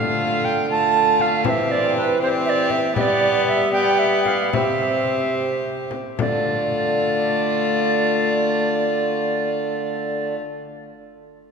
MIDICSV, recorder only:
0, 0, Header, 1, 2, 480
1, 0, Start_track
1, 0, Tempo, 504626
1, 1374, Time_signature, 6, 3, 24, 8
1, 2814, Tempo, 522648
1, 4254, Tempo, 563380
1, 10208, End_track
2, 0, Start_track
2, 0, Title_t, "Recorder"
2, 0, Program_c, 0, 74
2, 0, Note_on_c, 0, 77, 102
2, 422, Note_on_c, 0, 79, 87
2, 436, Note_off_c, 0, 77, 0
2, 659, Note_off_c, 0, 79, 0
2, 673, Note_on_c, 0, 81, 106
2, 1150, Note_on_c, 0, 77, 97
2, 1164, Note_off_c, 0, 81, 0
2, 1375, Note_off_c, 0, 77, 0
2, 1381, Note_on_c, 0, 77, 93
2, 1420, Note_on_c, 0, 76, 101
2, 1430, Note_off_c, 0, 77, 0
2, 1627, Note_on_c, 0, 74, 104
2, 1641, Note_off_c, 0, 76, 0
2, 1860, Note_off_c, 0, 74, 0
2, 1871, Note_on_c, 0, 71, 88
2, 2097, Note_off_c, 0, 71, 0
2, 2114, Note_on_c, 0, 72, 98
2, 2171, Note_off_c, 0, 72, 0
2, 2334, Note_on_c, 0, 76, 100
2, 2369, Note_on_c, 0, 74, 109
2, 2378, Note_off_c, 0, 76, 0
2, 2569, Note_on_c, 0, 76, 103
2, 2583, Note_off_c, 0, 74, 0
2, 2812, Note_off_c, 0, 76, 0
2, 2823, Note_on_c, 0, 76, 97
2, 2858, Note_on_c, 0, 74, 106
2, 2867, Note_off_c, 0, 76, 0
2, 3280, Note_off_c, 0, 74, 0
2, 3290, Note_on_c, 0, 76, 105
2, 3511, Note_off_c, 0, 76, 0
2, 3516, Note_on_c, 0, 79, 108
2, 3760, Note_on_c, 0, 76, 95
2, 3773, Note_off_c, 0, 79, 0
2, 3989, Note_off_c, 0, 76, 0
2, 3995, Note_on_c, 0, 77, 90
2, 4243, Note_off_c, 0, 77, 0
2, 4251, Note_on_c, 0, 76, 89
2, 4939, Note_off_c, 0, 76, 0
2, 5681, Note_on_c, 0, 74, 88
2, 9217, Note_off_c, 0, 74, 0
2, 10208, End_track
0, 0, End_of_file